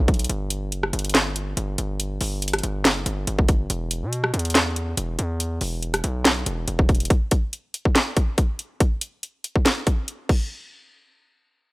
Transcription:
Already playing: B1
0.08 kick, closed hi-hat
0.14 closed hi-hat
0.19 closed hi-hat
0.24 closed hi-hat
0.29 G1, closed hi-hat
0.50 closed hi-hat
0.72 F#1, closed hi-hat
0.83 cross-stick
0.93 G1, closed hi-hat
0.99 closed hi-hat
1.05 closed hi-hat
1.09 closed hi-hat
1.15 snare, clap, closed hi-hat
1.36 closed hi-hat
1.57 G1, closed hi-hat
1.78 G1, closed hi-hat
2.00 closed hi-hat
2.21 G1, open hi-hat
2.42 closed hi-hat
2.48 closed hi-hat
2.53 cross-stick, closed hi-hat
2.59 closed hi-hat
2.63 G1, closed hi-hat
2.85 F#1, snare, clap, closed hi-hat
3.06 G1, closed hi-hat
3.27 G1, closed hi-hat
3.39 kick
3.48 kick, closed hi-hat
3.70 E1, closed hi-hat
3.91 closed hi-hat
4.02 B2
4.13 closed hi-hat
4.24 cross-stick
4.34 E2, closed hi-hat
4.39 closed hi-hat
4.45 closed hi-hat
4.50 closed hi-hat
4.55 snare, clap, closed hi-hat
4.76 closed hi-hat
4.97 E1, closed hi-hat
5.19 E2, closed hi-hat
5.40 closed hi-hat
5.61 E1, open hi-hat
5.82 closed hi-hat
5.94 cross-stick, closed hi-hat
6.04 B1, closed hi-hat
6.25 snare, clap, closed hi-hat
6.46 E1, closed hi-hat
6.68 E1, closed hi-hat
6.79 kick
6.89 kick, closed hi-hat
6.95 closed hi-hat
7.00 closed hi-hat
7.05 closed hi-hat
7.10 kick, closed hi-hat
7.31 kick, closed hi-hat
7.53 closed hi-hat
7.74 closed hi-hat
7.85 kick
7.95 snare, clap, closed hi-hat
8.17 kick, closed hi-hat
8.38 kick, closed hi-hat
8.59 closed hi-hat
8.80 kick, closed hi-hat
9.01 closed hi-hat
9.23 closed hi-hat
9.44 closed hi-hat
9.56 kick
9.66 snare, clap, closed hi-hat
9.87 kick, closed hi-hat
10.08 closed hi-hat
10.29 kick, crash

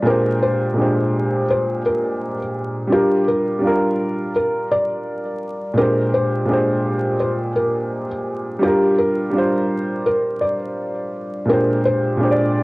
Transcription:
0.02 A#2 G#3 D4
0.07 G4 A#4 C5
0.42 C5
0.74 A#2 G#3
0.78 D4 G4 C5
1.50 C5
1.86 A#4
2.87 G3 D4
2.93 F4 G4 A#4
3.28 A#4
3.59 G3 D4
3.65 F4 A#4
4.36 A#4
4.71 D5
5.73 A#2 G#3 D4
5.77 G4 A#4 C5
6.14 C5
6.45 A#2 G#3 D4
6.51 G4 C5
7.20 C5
7.56 A#4
8.59 G3 D4 G4
8.64 F4 A#4
8.99 A#4
9.30 G3 D4
9.35 F4 C5
10.06 A#4
10.41 D5
11.45 A#2 G#3 D4
11.49 G4 A#4 C5
11.85 C5
12.17 A#2 G#3 D4
12.23 G4 C5
12.31 D5

